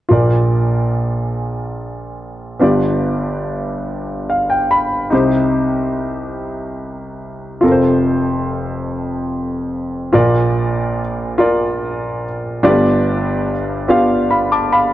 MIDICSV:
0, 0, Header, 1, 2, 480
1, 0, Start_track
1, 0, Key_signature, -2, "major"
1, 0, Tempo, 835655
1, 59, Time_signature, 6, 3, 24, 8
1, 8578, End_track
2, 0, Start_track
2, 0, Title_t, "Grand piano"
2, 0, Program_c, 0, 0
2, 49, Note_on_c, 0, 65, 44
2, 60, Note_on_c, 0, 46, 43
2, 60, Note_on_c, 0, 70, 40
2, 62, Note_on_c, 0, 34, 44
2, 72, Note_on_c, 0, 74, 49
2, 160, Control_c, 0, 64, 127
2, 1473, Note_off_c, 0, 65, 0
2, 1478, Note_off_c, 0, 70, 0
2, 1479, Note_off_c, 0, 34, 0
2, 1479, Note_off_c, 0, 46, 0
2, 1484, Note_off_c, 0, 74, 0
2, 1490, Note_on_c, 0, 59, 46
2, 1496, Note_on_c, 0, 62, 41
2, 1499, Note_on_c, 0, 31, 47
2, 1500, Note_on_c, 0, 43, 46
2, 1500, Note_on_c, 0, 65, 40
2, 1507, Note_on_c, 0, 67, 43
2, 1509, Control_c, 0, 64, 0
2, 1513, Note_on_c, 0, 74, 49
2, 1597, Control_c, 0, 64, 127
2, 2467, Note_on_c, 0, 77, 46
2, 2576, Note_off_c, 0, 77, 0
2, 2583, Note_on_c, 0, 79, 44
2, 2694, Note_off_c, 0, 79, 0
2, 2704, Note_on_c, 0, 83, 54
2, 2914, Note_off_c, 0, 59, 0
2, 2916, Note_off_c, 0, 62, 0
2, 2918, Note_off_c, 0, 31, 0
2, 2918, Note_off_c, 0, 43, 0
2, 2919, Note_off_c, 0, 65, 0
2, 2922, Note_off_c, 0, 67, 0
2, 2925, Note_off_c, 0, 74, 0
2, 2926, Note_off_c, 0, 83, 0
2, 2930, Note_on_c, 0, 63, 46
2, 2942, Note_on_c, 0, 36, 51
2, 2943, Note_on_c, 0, 67, 46
2, 2944, Note_on_c, 0, 48, 50
2, 2949, Control_c, 0, 64, 0
2, 2954, Note_on_c, 0, 72, 49
2, 3038, Control_c, 0, 64, 127
2, 4353, Note_off_c, 0, 63, 0
2, 4359, Note_off_c, 0, 36, 0
2, 4359, Note_off_c, 0, 67, 0
2, 4360, Note_off_c, 0, 48, 0
2, 4365, Note_off_c, 0, 72, 0
2, 4370, Note_on_c, 0, 65, 55
2, 4382, Note_on_c, 0, 41, 47
2, 4382, Note_on_c, 0, 69, 45
2, 4383, Note_on_c, 0, 29, 48
2, 4390, Control_c, 0, 64, 0
2, 4394, Note_on_c, 0, 70, 42
2, 4425, Note_off_c, 0, 70, 0
2, 4432, Note_on_c, 0, 72, 57
2, 4476, Control_c, 0, 64, 127
2, 5791, Note_off_c, 0, 65, 0
2, 5797, Note_off_c, 0, 41, 0
2, 5797, Note_off_c, 0, 69, 0
2, 5798, Note_off_c, 0, 29, 0
2, 5816, Note_on_c, 0, 65, 62
2, 5821, Note_on_c, 0, 70, 57
2, 5822, Note_off_c, 0, 72, 0
2, 5822, Note_on_c, 0, 34, 47
2, 5822, Note_on_c, 0, 46, 50
2, 5826, Control_c, 0, 64, 0
2, 5827, Note_on_c, 0, 74, 69
2, 5926, Control_c, 0, 64, 127
2, 6316, Note_off_c, 0, 65, 0
2, 6319, Note_off_c, 0, 70, 0
2, 6322, Note_off_c, 0, 74, 0
2, 6536, Note_on_c, 0, 65, 59
2, 6542, Note_on_c, 0, 70, 50
2, 6548, Note_on_c, 0, 74, 53
2, 7036, Note_off_c, 0, 65, 0
2, 7039, Note_off_c, 0, 70, 0
2, 7042, Note_off_c, 0, 74, 0
2, 7235, Note_off_c, 0, 34, 0
2, 7236, Note_off_c, 0, 46, 0
2, 7255, Note_on_c, 0, 57, 50
2, 7256, Note_on_c, 0, 62, 62
2, 7260, Note_on_c, 0, 31, 50
2, 7260, Note_on_c, 0, 43, 53
2, 7260, Note_on_c, 0, 65, 64
2, 7264, Note_on_c, 0, 67, 62
2, 7265, Control_c, 0, 64, 0
2, 7265, Note_on_c, 0, 74, 76
2, 7291, Note_on_c, 0, 59, 62
2, 7294, Note_off_c, 0, 57, 0
2, 7366, Control_c, 0, 64, 127
2, 7755, Note_off_c, 0, 62, 0
2, 7757, Note_off_c, 0, 65, 0
2, 7758, Note_off_c, 0, 67, 0
2, 7759, Note_off_c, 0, 74, 0
2, 7772, Note_off_c, 0, 59, 0
2, 7974, Note_on_c, 0, 59, 51
2, 7975, Note_on_c, 0, 62, 49
2, 7979, Note_on_c, 0, 65, 55
2, 7982, Note_on_c, 0, 67, 49
2, 7985, Note_on_c, 0, 77, 64
2, 8210, Note_off_c, 0, 77, 0
2, 8217, Note_on_c, 0, 83, 51
2, 8219, Note_on_c, 0, 77, 40
2, 8330, Note_off_c, 0, 83, 0
2, 8331, Note_off_c, 0, 77, 0
2, 8339, Note_on_c, 0, 86, 56
2, 8341, Note_on_c, 0, 81, 46
2, 8451, Note_off_c, 0, 86, 0
2, 8452, Note_off_c, 0, 81, 0
2, 8457, Note_on_c, 0, 83, 57
2, 8460, Note_on_c, 0, 77, 47
2, 8473, Note_off_c, 0, 59, 0
2, 8473, Note_off_c, 0, 62, 0
2, 8475, Note_off_c, 0, 65, 0
2, 8477, Note_off_c, 0, 67, 0
2, 8570, Note_off_c, 0, 83, 0
2, 8571, Note_off_c, 0, 77, 0
2, 8578, Note_off_c, 0, 31, 0
2, 8578, Note_off_c, 0, 43, 0
2, 8578, End_track
0, 0, End_of_file